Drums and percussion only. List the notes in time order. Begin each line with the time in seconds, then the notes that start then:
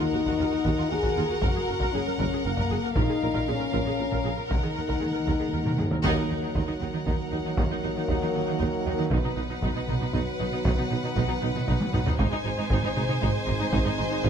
0.26 taiko
0.65 taiko
1.03 taiko
1.42 taiko
1.80 taiko
2.19 taiko
2.57 taiko
2.96 taiko
3.35 taiko
3.74 taiko
4.12 taiko
4.51 taiko
4.89 taiko
5.28 taiko
5.66 taiko mid
5.79 taiko low-mid
5.92 taiko low
6.04 taiko
6.55 taiko
7.07 taiko
7.57 taiko
8.08 taiko
8.60 taiko
9.11 taiko
9.62 taiko
9.88 taiko mid
10.01 taiko mid
10.13 taiko
10.65 taiko
11.16 taiko
11.42 taiko mid
11.55 taiko mid
11.68 taiko
11.81 taiko high
11.93 taiko low-mid
12.06 taiko low
12.19 taiko
12.70 taiko
12.96 taiko mid
13.09 taiko mid
13.22 taiko
13.73 taiko
14.24 taiko